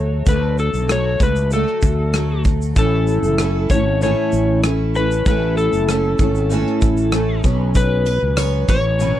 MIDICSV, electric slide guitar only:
0, 0, Header, 1, 2, 480
1, 0, Start_track
1, 0, Key_signature, 3, "major"
1, 0, Tempo, 623701
1, 205, Time_signature, 4, 2, 24, 8
1, 7079, End_track
2, 0, Start_track
2, 0, Title_t, "Electric slide guitar"
2, 0, Program_c, 0, 29
2, 0, Note_on_c, 0, 73, 82
2, 218, Note_off_c, 0, 73, 0
2, 221, Note_on_c, 0, 71, 83
2, 456, Note_off_c, 0, 71, 0
2, 459, Note_on_c, 0, 69, 70
2, 699, Note_off_c, 0, 69, 0
2, 706, Note_on_c, 0, 73, 89
2, 943, Note_off_c, 0, 73, 0
2, 945, Note_on_c, 0, 71, 78
2, 1178, Note_off_c, 0, 71, 0
2, 1181, Note_on_c, 0, 69, 66
2, 1863, Note_off_c, 0, 69, 0
2, 2145, Note_on_c, 0, 69, 82
2, 2854, Note_on_c, 0, 73, 93
2, 2877, Note_off_c, 0, 69, 0
2, 3094, Note_off_c, 0, 73, 0
2, 3103, Note_on_c, 0, 73, 86
2, 3544, Note_off_c, 0, 73, 0
2, 3819, Note_on_c, 0, 71, 90
2, 4052, Note_off_c, 0, 71, 0
2, 4062, Note_on_c, 0, 71, 99
2, 4288, Note_off_c, 0, 71, 0
2, 4291, Note_on_c, 0, 69, 82
2, 5698, Note_off_c, 0, 69, 0
2, 5977, Note_on_c, 0, 71, 96
2, 6693, Note_on_c, 0, 73, 104
2, 6713, Note_off_c, 0, 71, 0
2, 7079, Note_off_c, 0, 73, 0
2, 7079, End_track
0, 0, End_of_file